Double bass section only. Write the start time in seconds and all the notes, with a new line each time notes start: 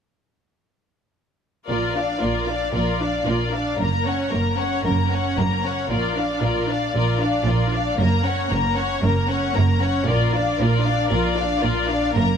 1.69 A#1
2.22 A#1
2.74 A#1
3.27 A#1
3.81 F#1
4.33 F#1
4.86 F#1
5.39 F#1
5.91 A#1
6.43 A#1
6.95 A#1
7.47 A#1
8.00 F#1
8.53 F#1
9.05 F#1
9.56 F#1
10.08 A#1
10.60 A#1
11.12 A#1
11.64 A#1
12.16 F#1